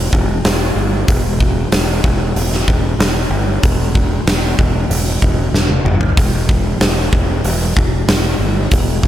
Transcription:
0.13 E1, kick
0.44 E1, snare, open hi-hat
0.75 G1
1.08 E1, kick, open hi-hat
1.40 kick
1.72 E1, snare, open hi-hat
2.04 E1, kick
2.36 E1, open hi-hat
2.53 snare
2.67 E1, kick
2.98 E1, snare, open hi-hat
3.30 G1
3.63 E1, kick, open hi-hat
3.95 kick
4.25 E1, snare, open hi-hat
4.59 E1, kick
4.89 E1, open hi-hat
5.22 E1, kick
5.53 E1, snare
5.70 high tom
5.84 G1, mid tom
6.01 floor tom
6.17 E1, kick, open hi-hat
6.49 kick
6.80 E1, snare, open hi-hat
7.12 E1, kick
7.44 E1, open hi-hat
7.77 E1, kick
8.08 E1, snare, open hi-hat
8.39 G1
8.71 E1, kick, open hi-hat
9.03 kick

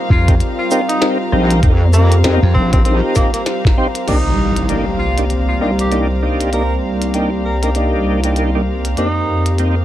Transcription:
Already playing: G3 C4 F4 G4 A#4 C5 F5 A#5
0.10 F2 F4, kick
0.28 C4 D#4 G4 A#4, kick, closed hi-hat
0.40 closed hi-hat
0.59 F4
0.71 C4 D#4 F4 G4 A#4, shaker
0.89 D#4, closed hi-hat
1.02 C4 D#4 G4 A#4, snare, closed hi-hat
1.32 A#1 C4 D#4 G4 A#4, cross-stick
1.51 closed hi-hat
1.63 F2 C4 D#4 G4 A#4, kick, closed hi-hat
1.93 A#3, cross-stick, shaker
2.12 closed hi-hat
2.24 F2 C4 D#4 G4 A#4, snare, closed hi-hat
2.42 F2
2.54 A#1 C4, kick
2.72 C4 D#4 G4 A#4, kick, closed hi-hat
2.84 C4 D#4 G4 A#4, closed hi-hat
3.16 A#3, kick, snare, shaker
3.33 A#3, closed hi-hat
3.46 snare, closed hi-hat
3.65 kick, snare
3.78 C4 D#4 G4 C5
3.95 closed hi-hat
4.07 C2 A#3 C4 D4 D#4 G4 A#4 D5, closed hi-hat, crash, impact
4.56 closed hi-hat
4.69 A#3 D4 D#4 G4, closed hi-hat
4.99 F4
5.18 A#3 D4 D#4 G4, closed hi-hat
5.30 closed hi-hat
5.48 F4
5.61 A#3 D4 D#4 F4 G4
5.79 G4, closed hi-hat
5.92 A#3 D4 D#4 G4, closed hi-hat
6.22 A#3 D4 D#4 G4
6.41 closed hi-hat
6.53 A#3 D4 D#4 G4 A#4, closed hi-hat
7.02 closed hi-hat
7.14 A#3 D4 D#4 G4, closed hi-hat
7.45 A#4
7.63 A#3 D4 D#4 G4 A#4, closed hi-hat
7.75 A#3 D4 D#4 G4, closed hi-hat
8.24 A#3 D4 D#4 G4, closed hi-hat
8.36 closed hi-hat
8.55 A#3 D4 D#4 G4
8.85 closed hi-hat
8.97 F2 A#3 C4 D#4 G4 F5, closed hi-hat
9.46 closed hi-hat
9.58 A#3 C4 D#4 G4, closed hi-hat

